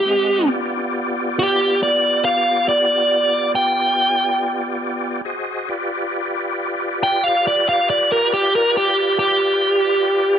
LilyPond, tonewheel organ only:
\new Staff \with { instrumentName = "Tonewheel organ" } { \time 12/8 \key g \mixolydian \tempo 4. = 46 <aes c' ees'' fis''>8 <b f' g' d''>1~ <b f' g' d''>4. | <fis' aes' c'' ees''>8 <f' g' b' d''>1~ <f' g' b' d''>4. | }